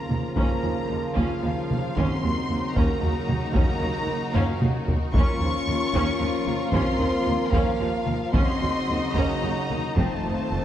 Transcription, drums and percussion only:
0.11 taiko mid soft
0.37 taiko medium
1.17 taiko medium
1.71 taiko mid soft
1.97 taiko medium
2.76 taiko medium
3.29 taiko mid medium
3.55 taiko medium
4.35 taiko low-mid medium
4.62 taiko mid medium
4.88 taiko low medium
5.14 taiko loud
5.94 taiko medium
6.47 taiko mid medium
6.73 taiko loud
7.53 taiko medium
8.06 taiko mid medium
8.34 taiko medium
9.15 taiko medium
9.70 taiko mid soft
9.98 taiko medium

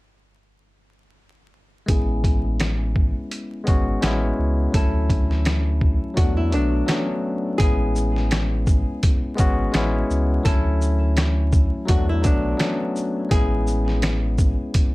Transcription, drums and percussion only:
1.88 kick loud
1.88 closed hi-hat medium
2.24 kick medium
2.24 closed hi-hat medium
2.60 snare loud
2.60 snare medium
2.60 closed hi-hat medium
2.96 kick medium
3.31 closed hi-hat medium
3.67 kick medium
3.67 closed hi-hat medium
4.02 snare loud
4.02 snare medium
4.02 closed hi-hat medium
4.74 kick loud
4.74 closed hi-hat medium
5.10 kick medium
5.10 closed hi-hat medium
5.31 snare soft
5.45 snare loud
5.45 snare medium
5.45 closed hi-hat medium
5.81 kick medium
6.17 kick medium
6.17 closed hi-hat medium
6.52 closed hi-hat medium
6.88 snare loud
6.88 snare medium
6.88 closed hi-hat medium
7.60 kick loud
7.60 closed hi-hat loud
7.96 shaker medium
8.16 snare soft
8.31 snare loud
8.31 closed hi-hat medium
8.67 kick medium
8.67 shaker medium
9.03 kick medium
9.03 closed hi-hat medium
9.38 kick loud
9.38 closed hi-hat medium
9.38 shaker medium
9.74 snare loud
9.74 snare medium
9.74 closed hi-hat medium
10.10 shaker medium
10.46 kick loud
10.46 closed hi-hat loud
10.81 shaker medium
11.17 snare loud
11.17 closed hi-hat medium
11.52 kick loud
11.52 shaker medium
11.88 kick loud
11.88 closed hi-hat medium
12.24 kick medium
12.24 closed hi-hat medium
12.24 shaker medium
12.59 snare loud
12.59 closed hi-hat medium
12.96 shaker medium
13.31 kick loud
13.31 closed hi-hat loud
13.67 shaker medium
13.88 snare soft
14.02 snare loud
14.02 closed hi-hat medium
14.38 kick loud
14.38 shaker medium
14.74 kick medium
14.74 closed hi-hat medium

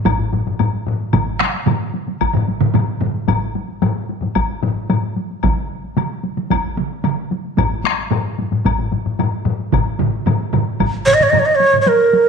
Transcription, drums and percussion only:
0.05 taiko loud
0.05 taiko low-mid medium
0.05 taiko high medium
0.05 high woodblock medium
0.19 taiko low-mid medium
0.19 taiko high soft
0.33 taiko low-mid medium
0.33 taiko high medium
0.47 taiko low-mid medium
0.47 taiko high soft
0.59 taiko low-mid medium
0.59 taiko high medium
0.59 high woodblock soft
0.73 taiko high soft
0.87 taiko low-mid medium
1.00 taiko high soft
1.13 taiko medium
1.13 taiko low-mid medium
1.13 taiko mid medium
1.13 taiko high medium
1.13 high woodblock soft
1.27 taiko high soft
1.39 taiko rim medium
1.39 taiko high medium
1.54 taiko high soft
1.67 taiko low-mid medium
1.67 taiko mid loud
1.67 taiko high medium
1.67 high woodblock soft
1.81 taiko high soft
1.94 taiko high soft
2.08 taiko high soft
2.21 taiko medium
2.21 taiko high medium
2.21 high woodblock medium
2.33 taiko low-mid medium
2.33 taiko mid medium
2.33 taiko high soft
2.48 taiko high medium
2.61 taiko low-mid medium
2.61 taiko mid loud
2.61 taiko high soft
2.74 taiko low-mid medium
2.74 taiko mid loud
2.74 taiko high medium
2.74 high woodblock soft
3.01 taiko low-mid medium
3.01 taiko mid medium
3.01 taiko high medium
3.15 taiko high soft
3.28 taiko medium
3.28 taiko low-mid medium
3.28 taiko high medium
3.28 high woodblock medium
3.42 taiko high soft
3.55 taiko high medium
3.68 taiko high soft
3.82 taiko low-mid loud
3.82 taiko high medium
3.82 high woodblock soft
3.96 taiko high soft
4.09 taiko high soft
4.22 taiko low-mid medium
4.22 taiko high soft
4.35 taiko medium
4.35 taiko high medium
4.35 high woodblock medium
4.49 taiko high soft
4.63 taiko low-mid loud
4.63 taiko high soft
4.76 taiko high soft
4.90 taiko low-mid medium
4.90 taiko high medium
4.90 high woodblock soft
5.03 taiko high soft
5.16 taiko high soft
5.30 taiko high soft
5.43 taiko medium
5.43 taiko mid medium
5.43 taiko high medium
5.43 high woodblock soft
5.57 taiko high soft
5.84 taiko high soft
5.97 taiko mid medium
5.97 taiko high medium
5.97 high woodblock soft
6.10 taiko high soft
6.23 taiko high soft
6.37 taiko mid medium
6.37 taiko high soft
6.50 taiko medium
6.50 taiko high medium
6.50 high woodblock soft
6.63 taiko high soft
6.77 taiko mid medium
6.77 taiko high soft
6.91 taiko high soft
7.04 taiko mid loud
7.04 taiko high medium
7.04 high woodblock soft
7.17 taiko high soft
7.31 taiko high medium
7.45 taiko high soft
7.58 taiko medium
7.58 taiko low-mid medium
7.58 taiko high medium
7.58 high woodblock medium
7.71 taiko high soft
7.84 taiko rim medium
7.84 taiko high medium
7.98 taiko high soft
8.11 taiko low-mid loud
8.11 taiko high medium
8.11 high woodblock soft
8.25 taiko high soft
8.38 taiko low-mid medium
8.38 taiko high soft
8.52 taiko low-mid medium
8.52 taiko high soft
8.65 taiko medium
8.65 taiko low-mid medium
8.65 taiko high medium
8.65 high woodblock medium
8.79 taiko low-mid medium
8.79 taiko high soft
8.92 taiko low-mid medium
8.92 taiko high soft
9.05 taiko low-mid medium
9.05 taiko high soft
9.19 taiko low-mid medium
9.19 taiko high medium
9.19 high woodblock soft
9.32 taiko high soft
9.46 taiko low-mid medium
9.46 taiko high soft
9.59 taiko high soft
9.72 taiko medium
9.72 taiko low-mid medium
9.72 taiko mid medium
9.72 taiko high medium
9.72 high woodblock soft
9.86 taiko high soft
9.99 taiko low-mid medium
9.99 taiko mid loud
9.99 taiko high medium
10.13 taiko high soft
10.26 taiko low-mid loud
10.26 taiko mid medium
10.26 taiko high medium
10.26 high woodblock soft
10.41 taiko high soft
10.53 taiko low-mid medium
10.53 taiko mid loud
10.53 taiko high soft
10.53 high woodblock soft
10.80 taiko loud
10.80 taiko low-mid medium
10.80 taiko mid medium
10.80 taiko high medium
10.80 high woodblock soft
10.93 taiko high soft
11.06 taiko low-mid medium
11.06 taiko mid medium
11.06 taiko high soft
11.20 taiko low-mid medium
11.20 taiko mid medium
11.20 taiko high soft
11.33 taiko low-mid medium
11.33 taiko mid loud
11.33 taiko high medium
11.33 high woodblock soft
11.47 taiko high soft
11.60 taiko high medium
11.73 taiko low-mid medium
11.73 taiko mid medium
11.73 taiko high soft
11.86 taiko high medium
12.00 taiko high soft
12.13 taiko high soft

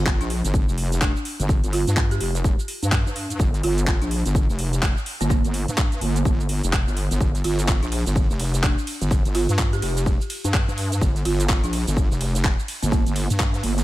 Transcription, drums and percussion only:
0.06 kick loud
0.06 clap loud
0.06 shaker medium
0.21 closed hi-hat medium
0.21 shaker soft
0.30 open hi-hat loud
0.45 closed hi-hat medium
0.45 shaker medium
0.54 kick loud
0.54 shaker medium
0.69 shaker soft
0.78 open hi-hat loud
0.92 closed hi-hat medium
0.92 shaker medium
1.01 kick loud
1.01 clap loud
1.01 shaker medium
1.17 shaker soft
1.25 open hi-hat loud
1.40 closed hi-hat medium
1.40 shaker medium
1.49 kick loud
1.49 shaker medium
1.64 closed hi-hat medium
1.64 shaker soft
1.73 open hi-hat loud
1.87 closed hi-hat medium
1.87 shaker medium
1.97 kick loud
1.97 clap loud
1.97 shaker medium
2.11 closed hi-hat medium
2.11 shaker soft
2.21 open hi-hat loud
2.35 closed hi-hat medium
2.35 shaker medium
2.44 kick loud
2.44 shaker medium
2.59 shaker soft
2.68 open hi-hat loud
2.83 closed hi-hat medium
2.83 shaker medium
2.92 kick loud
2.92 clap loud
2.92 shaker medium
3.07 shaker soft
3.16 open hi-hat loud
3.30 closed hi-hat medium
3.30 shaker medium
3.40 kick loud
3.40 shaker medium
3.54 closed hi-hat medium
3.54 shaker soft
3.63 open hi-hat loud
3.78 closed hi-hat medium
3.78 shaker medium
3.87 kick loud
3.87 clap loud
3.87 shaker medium
4.02 closed hi-hat medium
4.02 shaker soft
4.11 open hi-hat loud
4.26 closed hi-hat medium
4.26 shaker medium
4.35 kick loud
4.35 shaker medium
4.50 shaker soft
4.59 open hi-hat loud
4.73 closed hi-hat medium
4.73 shaker medium
4.83 kick loud
4.83 clap loud
4.83 shaker medium
4.97 shaker soft
5.06 open hi-hat loud
5.21 closed hi-hat medium
5.21 shaker medium
5.30 kick loud
5.30 shaker medium
5.44 closed hi-hat soft
5.44 shaker soft
5.54 open hi-hat loud
5.68 closed hi-hat medium
5.68 shaker medium
5.78 kick loud
5.78 clap loud
5.78 shaker medium
5.92 closed hi-hat medium
5.92 shaker soft
6.01 open hi-hat loud
6.16 closed hi-hat medium
6.16 shaker medium
6.25 kick loud
6.25 shaker medium
6.40 shaker soft
6.49 open hi-hat loud
6.64 closed hi-hat medium
6.64 shaker medium
6.73 kick loud
6.73 clap loud
6.73 shaker medium
6.88 shaker soft
6.97 open hi-hat loud
7.11 closed hi-hat medium
7.11 shaker medium
7.21 kick loud
7.21 shaker medium
7.35 closed hi-hat soft
7.35 shaker soft
7.44 open hi-hat loud
7.44 ride medium
7.59 closed hi-hat medium
7.59 shaker medium
7.68 kick loud
7.68 clap loud
7.68 shaker medium
7.83 closed hi-hat medium
7.83 shaker soft
7.92 open hi-hat loud
7.92 ride medium
8.06 closed hi-hat medium
8.06 shaker medium
8.16 kick loud
8.16 shaker medium
8.31 shaker soft
8.39 open hi-hat loud
8.39 ride medium
8.54 closed hi-hat medium
8.54 shaker medium
8.63 kick loud
8.63 clap loud
8.63 shaker medium
8.78 shaker soft
8.87 open hi-hat loud
8.87 ride medium
9.02 closed hi-hat medium
9.02 shaker medium
9.11 kick loud
9.11 shaker medium
9.25 closed hi-hat medium
9.25 shaker soft
9.35 open hi-hat loud
9.35 ride medium
9.49 closed hi-hat medium
9.49 shaker medium
9.59 kick loud
9.59 clap loud
9.59 shaker medium
9.73 closed hi-hat medium
9.73 shaker soft
9.82 open hi-hat loud
9.82 ride medium
9.97 closed hi-hat medium
9.97 shaker medium
10.06 kick loud
10.06 shaker medium
10.21 shaker soft
10.30 open hi-hat loud
10.30 ride medium
10.44 closed hi-hat medium
10.44 shaker medium
10.54 kick loud
10.54 clap loud
10.54 shaker medium
10.69 shaker soft
10.78 open hi-hat loud
10.78 ride medium
10.92 closed hi-hat medium
10.92 shaker medium
11.01 kick loud
11.01 shaker medium
11.16 closed hi-hat medium
11.16 shaker soft
11.25 open hi-hat loud
11.25 ride medium
11.40 closed hi-hat medium
11.40 shaker medium
11.49 kick loud
11.49 clap loud
11.49 shaker medium
11.64 closed hi-hat medium
11.64 shaker soft
11.73 open hi-hat loud
11.73 ride medium
11.87 closed hi-hat medium
11.87 shaker medium
11.97 kick loud
11.97 shaker medium
12.12 shaker soft
12.21 open hi-hat loud
12.21 ride medium
12.35 closed hi-hat medium
12.35 shaker medium
12.44 kick loud
12.44 clap loud
12.44 shaker medium
12.59 shaker soft
12.68 open hi-hat loud
12.68 ride medium
12.83 closed hi-hat medium
12.83 shaker medium
12.92 kick loud
12.92 shaker medium
13.06 closed hi-hat medium
13.06 shaker soft
13.16 open hi-hat loud
13.16 ride medium
13.30 closed hi-hat medium
13.30 shaker medium
13.40 kick loud
13.40 clap loud
13.40 shaker medium
13.54 closed hi-hat medium
13.54 shaker soft
13.63 open hi-hat loud
13.63 ride medium
13.78 closed hi-hat medium
13.78 shaker medium

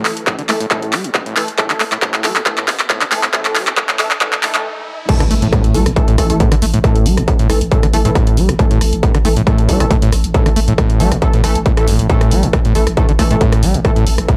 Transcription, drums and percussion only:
0.05 clap medium
0.05 open hi-hat loud
0.17 closed hi-hat medium
0.27 kick loud
0.27 clap medium
0.27 closed hi-hat medium
0.39 closed hi-hat medium
0.49 clap medium
0.49 open hi-hat loud
0.60 closed hi-hat medium
0.71 kick loud
0.71 clap medium
0.71 closed hi-hat medium
0.82 closed hi-hat medium
0.93 clap medium
0.93 open hi-hat loud
1.04 closed hi-hat medium
1.15 kick loud
1.15 clap medium
1.15 closed hi-hat medium
1.26 closed hi-hat medium
1.37 clap loud
1.37 open hi-hat loud
1.48 closed hi-hat medium
1.58 kick loud
1.58 clap medium
1.58 closed hi-hat medium
1.70 clap medium
1.70 closed hi-hat medium
1.80 clap medium
1.80 open hi-hat loud
1.92 clap medium
1.92 closed hi-hat medium
2.02 kick loud
2.02 clap loud
2.02 closed hi-hat medium
2.14 clap medium
2.14 closed hi-hat medium
2.24 clap loud
2.24 open hi-hat loud
2.36 clap medium
2.36 closed hi-hat medium
2.46 kick loud
2.46 clap loud
2.46 closed hi-hat medium
2.58 clap medium
2.58 closed hi-hat medium
2.68 kick medium
2.68 clap loud
2.68 open hi-hat loud
2.79 clap medium
2.79 closed hi-hat medium
2.90 kick loud
2.90 clap loud
2.90 closed hi-hat medium
3.01 clap medium
3.01 closed hi-hat medium
3.12 clap loud
3.12 open hi-hat loud
3.23 clap medium
3.23 closed hi-hat medium
3.34 kick loud
3.34 clap loud
3.34 closed hi-hat medium
3.45 clap medium
3.45 closed hi-hat medium
3.55 clap loud
3.55 open hi-hat loud
3.67 clap medium
3.67 closed hi-hat medium
3.77 kick loud
3.77 clap loud
3.77 closed hi-hat medium
3.89 clap medium
3.89 closed hi-hat medium
3.99 clap loud
3.99 open hi-hat loud
4.11 clap medium
4.11 closed hi-hat medium
4.21 kick loud
4.21 clap loud
4.21 closed hi-hat medium
4.33 clap medium
4.33 closed hi-hat medium
4.43 clap loud
4.43 open hi-hat loud
4.55 clap loud
4.55 closed hi-hat medium
5.09 kick loud
5.09 closed hi-hat medium
5.09 crash loud
5.20 cross-stick medium
5.20 closed hi-hat medium
5.31 open hi-hat loud
5.42 closed hi-hat medium
5.53 kick loud
5.53 cross-stick medium
5.53 closed hi-hat medium
5.64 closed hi-hat medium
5.74 open hi-hat loud
5.86 cross-stick medium
5.86 closed hi-hat medium
5.96 kick loud
5.96 closed hi-hat medium
6.08 closed hi-hat medium
6.18 kick medium
6.18 cross-stick medium
6.18 open hi-hat loud
6.30 closed hi-hat medium
6.40 kick loud
6.40 closed hi-hat medium
6.52 cross-stick medium
6.52 closed hi-hat medium
6.62 open hi-hat loud
6.74 closed hi-hat medium
6.84 kick loud
6.84 cross-stick medium
6.84 closed hi-hat medium
6.96 closed hi-hat medium
7.06 open hi-hat loud
7.17 cross-stick medium
7.17 closed hi-hat medium
7.28 kick loud
7.28 closed hi-hat medium
7.39 closed hi-hat medium
7.50 cross-stick medium
7.50 open hi-hat loud
7.61 closed hi-hat medium
7.72 kick loud
7.72 closed hi-hat medium
7.83 cross-stick medium
7.83 closed hi-hat medium
7.93 open hi-hat loud
8.05 closed hi-hat medium
8.15 kick loud
8.15 cross-stick medium
8.15 closed hi-hat medium
8.27 closed hi-hat medium
8.37 open hi-hat loud
8.49 cross-stick medium
8.49 closed hi-hat medium
8.59 kick loud
8.59 closed hi-hat medium
8.71 closed hi-hat medium
8.81 cross-stick medium
8.81 open hi-hat loud
8.93 closed hi-hat medium
9.03 kick loud
9.03 closed hi-hat medium
9.15 cross-stick medium
9.15 closed hi-hat medium
9.25 open hi-hat loud
9.36 closed hi-hat medium
9.47 kick loud
9.47 cross-stick medium
9.47 closed hi-hat medium
9.58 closed hi-hat medium
9.69 kick medium
9.69 open hi-hat loud
9.80 cross-stick medium
9.80 closed hi-hat medium
9.91 kick loud
9.91 closed hi-hat medium
10.02 closed hi-hat medium
10.12 cross-stick medium
10.12 open hi-hat loud
10.24 closed hi-hat medium
10.34 kick loud
10.34 closed hi-hat medium
10.46 cross-stick medium
10.46 closed hi-hat medium
10.56 open hi-hat loud
10.68 closed hi-hat medium
10.78 kick loud
10.78 cross-stick medium
10.78 closed hi-hat medium
10.90 closed hi-hat medium
11.00 open hi-hat loud
11.12 cross-stick medium
11.12 closed hi-hat medium
11.22 kick loud
11.22 closed hi-hat medium
11.33 closed hi-hat medium
11.44 cross-stick medium
11.44 open hi-hat loud
11.55 closed hi-hat medium
11.66 kick loud
11.66 closed hi-hat medium
11.77 cross-stick medium
11.77 closed hi-hat medium
11.88 open hi-hat loud
11.99 closed hi-hat medium
12.10 kick loud
12.10 closed hi-hat medium
12.21 cross-stick medium
12.21 closed hi-hat medium
12.31 open hi-hat loud
12.43 closed hi-hat medium
12.53 kick loud
12.53 cross-stick medium
12.53 closed hi-hat medium
12.65 closed hi-hat medium
12.75 open hi-hat loud
12.87 cross-stick medium
12.87 closed hi-hat medium
12.97 kick loud
12.97 closed hi-hat medium
13.09 closed hi-hat medium
13.19 kick medium
13.19 cross-stick medium
13.19 open hi-hat loud
13.31 closed hi-hat medium
13.41 kick loud
13.41 closed hi-hat medium
13.52 cross-stick medium
13.52 closed hi-hat medium
13.63 open hi-hat loud
13.74 closed hi-hat medium
13.85 kick loud
13.85 cross-stick medium
13.85 closed hi-hat medium
13.96 closed hi-hat medium
14.07 open hi-hat loud
14.18 cross-stick medium
14.18 closed hi-hat medium
14.28 kick loud
14.28 closed hi-hat medium

